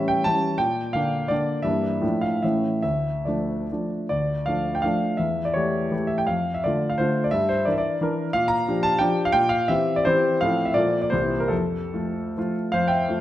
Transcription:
0.00 0.28 A2 medium
0.00 0.23 E3 soft
0.00 0.23 G3 soft
0.00 0.24 C#4 medium
0.00 0.28 E5 medium
0.08 0.25 G5 medium
0.24 0.56 E3 soft
0.24 0.57 G3 soft
0.24 0.56 C#4 soft
0.24 0.59 A5 medium
0.58 0.94 A#2 medium
0.58 0.94 G5 medium
0.93 1.27 D3 soft
0.93 1.27 A#3 soft
0.93 1.28 D4 soft
0.93 1.30 F5 medium
1.28 1.61 D3 soft
1.28 1.62 A#3 soft
1.28 1.62 D4 soft
1.28 1.64 D5 medium
1.62 2.01 G2 medium
1.62 1.99 E3 soft
1.62 1.99 A#3 soft
1.62 1.99 D4 soft
1.62 2.21 E5 medium
2.01 2.41 A2 medium
2.01 2.38 F3 soft
2.01 2.38 A3 soft
2.01 2.39 D4 soft
2.21 2.42 F5 medium
2.42 2.83 A2 soft
2.42 2.80 E3 soft
2.42 2.80 A3 soft
2.42 2.80 C#4 soft
2.42 2.81 E5 medium
2.83 3.25 D2 soft
2.83 3.26 E5 medium
3.25 3.66 F3 soft
3.25 3.66 A3 soft
3.25 3.66 D4 soft
3.25 3.89 D5 soft
3.72 4.06 F3 soft
3.72 4.06 A3 soft
3.72 4.06 D4 soft
4.09 4.46 D2 soft
4.09 4.47 D5 medium
4.46 4.80 F3 soft
4.46 4.80 A3 soft
4.46 4.81 D4 soft
4.46 4.74 F5 medium
4.75 4.83 G5 medium
4.82 5.16 F3 soft
4.82 5.16 A3 soft
4.82 5.16 D4 soft
4.82 5.19 F5 medium
5.17 5.55 E2 soft
5.17 5.46 E5 medium
5.45 5.55 D5 medium
5.54 5.89 E3 soft
5.54 5.89 A3 soft
5.54 5.89 G4 soft
5.54 6.09 C#5 medium
5.91 6.24 E3 soft
5.91 6.24 A3 soft
5.91 6.24 G4 soft
6.07 6.18 E5 medium
6.18 6.27 G5 medium
6.27 6.62 F2 soft
6.27 6.54 F5 medium
6.54 6.64 E5 medium
6.64 6.96 D3 soft
6.64 6.96 A3 soft
6.64 6.97 F4 soft
6.64 6.90 D5 medium
6.90 6.98 F5 medium
6.98 7.29 D3 soft
6.98 7.29 A3 soft
6.98 7.29 F4 medium
6.98 7.23 C5 medium
7.24 7.32 D5 medium
7.31 7.65 G2 medium
7.31 7.48 E5 medium
7.49 7.66 C5 medium
7.65 7.97 E3 soft
7.65 7.97 D4 soft
7.65 7.97 A#4 soft
7.65 7.72 D5 medium
7.72 7.79 E5 medium
7.78 7.99 D5 medium
8.01 8.29 E3 medium
8.01 8.29 D4 medium
8.01 8.30 A#4 medium
8.33 8.65 A#2 medium
8.33 8.48 F5 medium
8.48 8.83 A#5 medium
8.68 8.99 F3 soft
8.68 8.99 D4 soft
8.68 8.99 G4 soft
8.83 9.00 A5 medium
8.99 9.31 F3 medium
8.99 9.31 D4 medium
8.99 9.32 G4 medium
8.99 9.25 G5 medium
9.25 9.34 F5 medium
9.32 9.68 A#2 medium
9.32 9.51 G5 loud
9.49 9.68 F5 medium
9.68 10.02 E3 soft
9.68 10.02 C4 soft
9.68 10.02 G4 soft
9.68 9.96 E5 medium
9.96 10.06 D5 medium
10.05 10.37 E3 medium
10.05 10.37 C4 medium
10.05 10.37 G4 medium
10.05 10.39 C5 medium
10.41 10.75 A2 medium
10.41 10.72 F3 soft
10.41 10.73 C4 soft
10.41 10.73 A4 soft
10.41 10.66 F5 medium
10.65 10.75 E5 medium
10.74 11.12 A#2 medium
10.74 11.09 F3 soft
10.74 11.10 A#3 soft
10.74 11.10 A4 soft
10.74 11.00 D5 medium
11.02 11.12 D5 medium
11.10 11.50 C2 medium
11.10 11.47 E3 soft
11.10 11.47 A#3 soft
11.10 11.48 G4 soft
11.10 11.40 C5 medium
11.40 11.51 A#4 medium
11.48 11.91 F2 soft
11.48 12.55 A4 medium
11.93 12.32 F3 soft
11.93 12.32 A3 soft
11.93 12.33 F4 soft
12.37 12.71 F3 soft
12.37 12.71 A3 soft
12.37 12.71 F4 soft
12.72 13.05 F2 medium
12.72 12.88 C5 medium
12.72 12.89 F5 medium
12.88 13.21 E5 medium
12.88 13.21 G5 medium
13.08 13.21 F3 soft
13.08 13.21 A3 soft
13.08 13.21 F4 soft

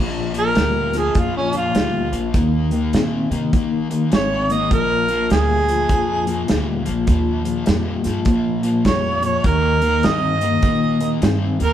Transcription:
0.00 0.53 A#1 medium
0.00 0.31 A#2 medium
0.00 0.31 F3 medium
0.34 0.54 A#2 medium
0.34 0.54 F3 medium
0.34 closed hi-hat medium
0.39 0.95 A#4 medium
0.55 1.12 D2 medium
0.55 0.90 A#2 medium
0.55 0.90 G3 medium
0.55 snare loud
0.55 closed hi-hat medium
0.93 1.14 A#2 medium
0.93 1.14 F3 medium
0.93 snare soft
0.93 closed hi-hat medium
0.98 1.20 G#4 medium
1.15 1.71 F2 medium
1.15 1.50 A#2 medium
1.15 1.51 F3 medium
1.15 1.36 F4 medium
1.15 kick medium
1.15 closed hi-hat medium
1.37 1.55 C#4 medium
1.53 1.73 A#2 medium
1.53 1.74 F3 medium
1.53 closed hi-hat medium
1.57 2.14 F4 medium
1.75 2.11 D2 medium
1.75 2.10 A#2 medium
1.75 2.10 G3 medium
1.75 snare loud
1.75 closed hi-hat medium
2.12 2.33 A#1 medium
2.12 2.32 A#2 medium
2.12 2.32 F3 medium
2.12 closed hi-hat medium
2.34 2.90 D#2 medium
2.34 2.69 D#3 medium
2.34 2.69 A#3 medium
2.34 kick loud
2.34 closed hi-hat medium
2.71 2.92 D#3 medium
2.71 2.92 A#3 medium
2.71 closed hi-hat medium
2.93 3.29 A#2 medium
2.93 3.28 D#3 medium
2.93 3.28 C4 medium
2.93 snare loud
2.93 closed hi-hat medium
3.31 3.52 C3 medium
3.31 3.51 D#3 medium
3.31 3.51 A#3 medium
3.31 closed hi-hat medium
3.53 3.87 D#3 medium
3.53 4.09 D#3 medium
3.53 3.87 A#3 medium
3.53 kick loud
3.53 closed hi-hat medium
3.90 4.10 D#3 medium
3.90 4.10 A#3 medium
3.90 closed hi-hat medium
4.11 4.68 G#1 medium
4.11 4.46 D#3 medium
4.11 4.46 C4 medium
4.11 4.54 C#5 medium
4.11 snare loud
4.11 closed hi-hat medium
4.50 4.69 D#3 medium
4.50 4.70 A#3 medium
4.50 4.72 D#5 medium
4.50 closed hi-hat medium
4.71 5.27 A#1 medium
4.71 5.06 A#2 medium
4.71 5.06 F3 medium
4.71 5.30 A#4 medium
4.71 kick loud
4.71 closed hi-hat medium
5.09 5.29 A#2 medium
5.09 5.30 F3 medium
5.09 closed hi-hat medium
5.30 5.87 D2 medium
5.30 5.65 A#2 medium
5.30 5.65 G3 medium
5.30 6.46 G#4 loud
5.30 snare medium
5.30 closed hi-hat medium
5.69 5.88 A#2 medium
5.69 5.88 F3 medium
5.69 closed hi-hat medium
5.89 6.46 F2 medium
5.89 6.24 A#2 medium
5.89 6.24 F3 medium
5.89 kick loud
5.89 closed hi-hat medium
6.27 6.47 A#2 medium
6.27 6.47 F3 medium
6.27 closed hi-hat medium
6.48 6.85 D2 medium
6.48 6.83 A#2 medium
6.48 6.83 G3 medium
6.48 snare loud
6.48 closed hi-hat medium
6.85 7.07 A#1 medium
6.85 7.05 A#2 medium
6.85 7.06 F3 medium
6.85 closed hi-hat medium
7.07 7.64 D#2 medium
7.07 7.42 A#2 medium
7.07 7.42 F3 medium
7.07 kick loud
7.07 closed hi-hat medium
7.45 7.65 A#2 medium
7.45 7.65 F3 medium
7.45 closed hi-hat medium
7.66 8.03 F2 medium
7.66 8.01 A#2 medium
7.66 8.01 G3 medium
7.66 snare loud
7.66 closed hi-hat medium
8.04 8.26 G2 medium
8.04 8.24 A#2 medium
8.04 8.24 F3 medium
8.04 snare soft
8.04 closed hi-hat medium
8.25 8.83 A#2 medium
8.25 8.60 A#2 medium
8.25 8.61 F3 medium
8.25 kick loud
8.25 closed hi-hat medium
8.63 8.83 A#2 medium
8.63 8.84 F3 medium
8.63 closed hi-hat medium
8.85 9.41 F2 medium
8.85 9.20 A#2 medium
8.85 9.20 G3 medium
8.85 9.23 C#5 medium
8.85 kick medium
8.85 snare loud
8.85 closed hi-hat medium
9.22 9.42 A#2 medium
9.22 9.43 F3 medium
9.22 9.45 C#5 medium
9.22 closed hi-hat medium
9.44 10.01 D#2 medium
9.44 9.79 D#3 medium
9.44 9.79 A#3 medium
9.44 10.07 A#4 medium
9.44 kick loud
9.44 closed hi-hat medium
9.82 10.02 D#3 medium
9.82 10.02 A#3 medium
9.82 closed hi-hat medium
10.03 10.61 G2 medium
10.03 10.38 D#3 medium
10.03 10.38 C4 medium
10.03 11.20 D#5 loud
10.03 snare loud
10.03 closed hi-hat medium
10.41 10.61 D#3 medium
10.41 10.61 A#3 medium
10.41 closed hi-hat medium
10.62 11.19 A#2 medium
10.62 10.97 D#3 medium
10.62 10.97 A#3 medium
10.62 kick loud
10.62 closed hi-hat medium
11.00 11.20 D#3 medium
11.00 11.20 A#3 medium
11.00 closed hi-hat medium
11.22 11.58 G2 medium
11.22 11.56 D#3 medium
11.22 11.56 C4 medium
11.22 snare loud
11.22 closed hi-hat medium
11.59 11.73 D#2 medium
11.59 11.73 D#3 medium
11.59 11.73 A#3 medium
11.59 closed hi-hat medium
11.64 11.73 A#4 medium

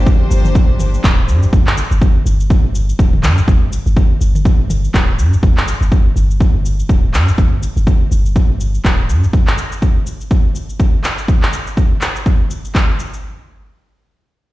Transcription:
0.00 0.25 G1 medium
0.00 1.49 F3 medium
0.00 1.49 A#3 medium
0.00 1.49 D4 medium
0.00 1.49 G4 medium
0.00 1.51 C5 medium
0.06 kick loud
0.06 cabasa soft
0.31 0.61 G1 medium
0.31 cabasa medium
0.45 mid tom medium
0.45 cabasa medium
0.55 kick loud
0.55 cabasa soft
0.70 0.98 G1 medium
0.79 mid tom medium
0.79 cabasa medium
0.94 cabasa medium
1.04 1.30 D1 medium
1.04 kick loud
1.04 clap loud
1.04 cabasa soft
1.28 1.45 G2 loud
1.28 cabasa medium
1.43 cabasa medium
1.53 1.83 G1 loud
1.53 kick loud
1.53 cabasa soft
1.67 clap medium
1.77 cabasa medium
1.91 2.20 G1 medium
1.91 cabasa medium
2.02 kick loud
2.02 cabasa soft
2.26 2.56 G1 medium
2.26 cabasa loud
2.40 cabasa medium
2.50 kick loud
2.50 cabasa soft
2.64 2.93 G1 medium
2.75 cabasa medium
2.89 cabasa medium
2.99 3.25 D1 medium
2.99 kick loud
2.99 cabasa soft
3.13 mid tom medium
3.23 3.40 G2 loud
3.23 clap medium
3.23 mid tom medium
3.23 cabasa medium
3.38 cabasa medium
3.48 3.78 G1 loud
3.48 kick loud
3.48 cabasa soft
3.73 cabasa medium
3.86 4.15 G1 medium
3.86 cabasa medium
3.97 kick loud
3.97 cabasa soft
4.21 4.51 G1 medium
4.21 cabasa medium
4.35 mid tom medium
4.35 cabasa medium
4.45 kick loud
4.45 cabasa soft
4.59 4.88 G1 medium
4.70 mid tom medium
4.70 cabasa medium
4.85 cabasa medium
4.94 5.20 D1 medium
4.94 kick loud
4.94 clap medium
4.94 cabasa soft
5.19 5.35 G2 loud
5.19 cabasa medium
5.33 cabasa medium
5.43 5.73 G1 loud
5.43 kick loud
5.43 cabasa soft
5.57 clap medium
5.68 cabasa medium
5.81 6.10 G1 medium
5.81 cabasa soft
5.92 kick loud
5.92 cabasa soft
6.16 6.46 G1 medium
6.16 cabasa medium
6.31 cabasa soft
6.40 kick loud
6.40 cabasa soft
6.54 6.83 G1 medium
6.65 cabasa medium
6.80 cabasa soft
6.89 7.15 D1 medium
6.89 kick loud
6.89 cabasa soft
7.14 7.30 G2 loud
7.14 clap medium
7.14 cabasa medium
7.28 cabasa medium
7.38 7.68 G1 loud
7.38 kick loud
7.38 cabasa soft
7.63 cabasa medium
7.76 8.05 G1 medium
7.76 cabasa soft
7.87 kick loud
7.87 cabasa soft
8.11 8.41 G1 medium
8.11 cabasa medium
8.26 cabasa soft
8.36 kick loud
8.36 cabasa soft
8.50 8.78 G1 medium
8.61 cabasa medium
8.75 cabasa soft
8.85 9.11 D1 medium
8.85 kick loud
8.85 clap medium
8.85 cabasa soft
9.09 9.26 G2 loud
9.09 cabasa medium
9.24 cabasa soft
9.33 kick loud
9.33 cabasa soft
9.47 clap medium
9.58 cabasa medium
9.72 cabasa soft
9.82 kick loud
9.82 cabasa soft
10.07 cabasa medium
10.21 cabasa soft
10.31 kick loud
10.31 cabasa soft
10.55 cabasa medium
10.69 cabasa soft
10.80 kick loud
10.80 cabasa soft
11.04 clap medium
11.04 cabasa medium
11.18 cabasa soft
11.28 kick loud
11.28 cabasa soft
11.43 clap medium
11.53 cabasa medium
11.67 cabasa soft
11.77 kick loud
11.77 cabasa soft
12.01 clap medium
12.01 cabasa medium
12.16 cabasa soft
12.26 kick loud
12.26 cabasa soft
12.51 cabasa medium
12.65 cabasa soft
12.75 kick loud
12.75 clap medium
12.75 cabasa soft
13.00 cabasa medium
13.14 cabasa soft

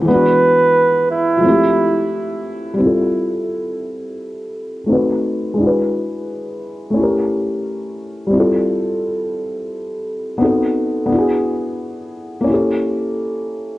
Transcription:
0.01 1.39 E3 medium
0.01 1.39 G#3 medium
0.08 1.42 B3 medium
0.08 1.43 D4 medium
0.08 1.06 B4 loud
0.14 1.45 F#4 medium
1.11 2.10 E4 medium
1.37 2.75 F3 medium
1.37 1.50 G#3 soft
1.43 2.80 A3 medium
1.43 2.76 C4 medium
1.43 2.79 E4 medium
1.50 2.82 G4 medium
2.74 4.81 G3 medium
2.78 4.83 C4 medium
2.78 4.84 E4 medium
2.84 4.86 F4 medium
2.84 4.87 A4 medium
4.86 5.56 A3 medium
4.86 5.57 C4 medium
4.86 5.58 D#4 medium
4.91 5.59 F#4 medium
4.91 5.60 B4 medium
5.54 6.91 G#3 medium
5.54 6.92 D4 medium
5.61 6.94 E4 medium
5.61 6.96 F#4 medium
5.67 6.98 B4 medium
6.90 8.28 A3 medium
6.90 8.30 C#4 medium
6.96 8.31 E4 medium
6.96 8.33 G4 medium
7.03 8.34 A#4 medium
8.27 10.33 G3 medium
8.27 10.35 C4 medium
8.34 10.36 E4 medium
8.34 10.38 F4 medium
8.40 10.40 A4 medium
10.38 11.04 B3 medium
10.38 11.09 C4 medium
10.38 11.10 D#4 medium
10.42 11.10 F#4 medium
10.42 11.11 A4 medium
11.06 12.43 B3 medium
11.06 12.44 D4 medium
11.12 12.46 E4 medium
11.12 12.48 F#4 medium
11.18 12.49 G#4 medium
12.41 13.78 A#3 medium
12.41 13.78 C#4 medium
12.47 13.78 E4 medium
12.47 13.78 G4 medium
12.54 13.78 A4 medium

